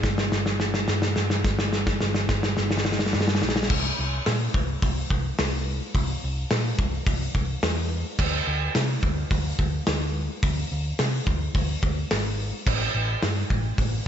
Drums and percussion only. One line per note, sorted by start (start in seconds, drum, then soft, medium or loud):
0.03 kick medium
0.03 snare loud
0.18 snare loud
0.32 snare medium
0.46 snare medium
0.60 snare medium
0.74 snare medium
0.88 snare loud
1.02 snare loud
1.16 snare medium
1.30 snare medium
1.44 kick loud
1.44 snare loud
1.59 snare loud
1.73 snare loud
1.87 kick medium
1.87 snare loud
2.01 snare loud
2.15 snare loud
2.29 kick medium
2.29 snare loud
2.43 snare loud
2.57 snare medium
2.71 snare medium
2.77 snare loud
2.85 snare loud
2.92 snare loud
2.99 snare loud
3.06 snare loud
3.13 snare loud
3.21 snare loud
3.28 snare loud
3.35 snare loud
3.42 snare loud
3.49 snare loud
3.56 snare loud
3.63 snare loud
3.70 kick loud
3.70 crash loud
4.26 snare loud
4.26 open hi-hat medium
4.54 kick loud
4.82 kick loud
4.82 open hi-hat medium
5.10 kick medium
5.39 snare loud
5.39 open hi-hat medium
5.95 kick loud
5.95 open hi-hat medium
6.51 snare loud
6.51 open hi-hat medium
6.79 kick loud
7.06 kick loud
7.06 open hi-hat medium
7.35 kick medium
7.63 snare loud
7.63 open hi-hat medium
8.19 kick loud
8.19 crash loud
8.75 snare loud
8.75 open hi-hat medium
9.03 kick medium
9.31 kick medium
9.31 open hi-hat medium
9.59 kick medium
9.87 snare loud
9.87 open hi-hat medium
10.43 kick loud
10.43 open hi-hat medium
10.99 snare loud
10.99 open hi-hat medium
11.27 kick loud
11.55 kick loud
11.55 open hi-hat medium
11.83 kick medium
12.11 snare loud
12.11 open hi-hat medium
12.67 kick loud
12.67 crash loud
13.23 snare loud
13.23 open hi-hat medium
13.50 kick loud
13.78 kick loud
13.78 open hi-hat medium